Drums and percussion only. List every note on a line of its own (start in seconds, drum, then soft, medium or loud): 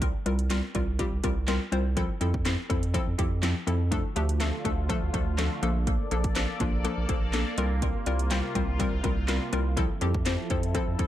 0.02 kick loud
0.02 closed hi-hat medium
0.26 closed hi-hat medium
0.39 closed hi-hat medium
0.50 snare loud
0.50 clap loud
0.50 closed hi-hat loud
0.75 kick medium
0.75 closed hi-hat medium
0.99 kick medium
0.99 closed hi-hat loud
1.24 kick loud
1.24 closed hi-hat medium
1.48 snare medium
1.48 clap loud
1.48 closed hi-hat loud
1.72 closed hi-hat medium
1.97 kick loud
1.97 closed hi-hat medium
2.21 closed hi-hat medium
2.34 kick loud
2.45 snare loud
2.45 clap loud
2.45 closed hi-hat medium
2.70 kick medium
2.70 closed hi-hat medium
2.83 closed hi-hat medium
2.94 kick medium
2.94 closed hi-hat medium
3.19 kick medium
3.19 closed hi-hat medium
3.43 snare medium
3.43 clap loud
3.43 closed hi-hat loud
3.67 closed hi-hat medium
3.92 kick loud
3.92 closed hi-hat medium
4.16 closed hi-hat medium
4.29 closed hi-hat medium
4.40 snare medium
4.40 clap loud
4.40 closed hi-hat loud
4.65 kick medium
4.65 closed hi-hat medium
4.90 kick medium
4.90 closed hi-hat medium
5.14 kick loud
5.14 closed hi-hat medium
5.38 snare medium
5.38 clap loud
5.38 closed hi-hat loud
5.63 closed hi-hat medium
5.87 kick loud
5.87 closed hi-hat medium
6.11 closed hi-hat medium
6.24 kick loud
6.24 closed hi-hat medium
6.35 snare loud
6.35 clap loud
6.35 closed hi-hat medium
6.60 kick medium
6.60 closed hi-hat medium
6.85 closed hi-hat medium
7.09 kick medium
7.09 closed hi-hat medium
7.33 snare loud
7.33 clap loud
7.33 closed hi-hat loud
7.58 closed hi-hat medium
7.82 kick loud
7.82 closed hi-hat medium
8.06 closed hi-hat medium
8.19 closed hi-hat medium
8.31 snare loud
8.31 clap loud
8.31 closed hi-hat loud
8.55 kick medium
8.55 closed hi-hat medium
8.80 kick medium
8.80 closed hi-hat medium
9.04 kick loud
9.04 closed hi-hat medium
9.28 snare medium
9.28 clap loud
9.28 closed hi-hat loud
9.53 closed hi-hat medium
9.77 kick loud
9.77 closed hi-hat medium
10.01 closed hi-hat medium
10.14 kick loud
10.26 snare loud
10.26 clap loud
10.26 closed hi-hat loud
10.50 kick medium
10.50 closed hi-hat medium
10.63 closed hi-hat medium
10.75 kick medium
10.75 closed hi-hat medium
10.99 kick loud
10.99 closed hi-hat medium